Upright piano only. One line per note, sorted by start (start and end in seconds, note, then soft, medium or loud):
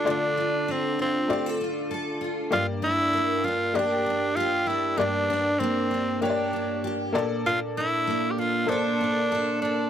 0.00 0.04 A3 medium
0.00 0.05 F4 medium
0.00 0.06 D5 medium
0.04 1.13 A3 medium
0.04 1.13 F4 medium
0.04 1.14 D5 medium
1.28 2.36 A3 medium
1.28 2.37 F4 medium
1.28 2.37 D5 medium
2.51 3.59 A#3 medium
2.51 3.59 G4 medium
2.51 3.60 D5 medium
3.74 4.82 A#3 medium
3.74 4.83 G4 medium
3.74 4.83 D5 medium
4.98 6.06 A#3 medium
4.98 6.07 G4 medium
4.98 6.07 D5 medium
6.21 7.11 A#3 medium
6.21 7.14 G4 medium
6.21 6.29 C#5 medium
6.30 7.13 D5 medium
7.13 8.21 A#3 medium
7.13 8.22 A4 medium
7.13 8.23 D5 loud
8.66 9.75 A#3 medium
8.66 9.75 A4 medium
8.66 9.76 C5 medium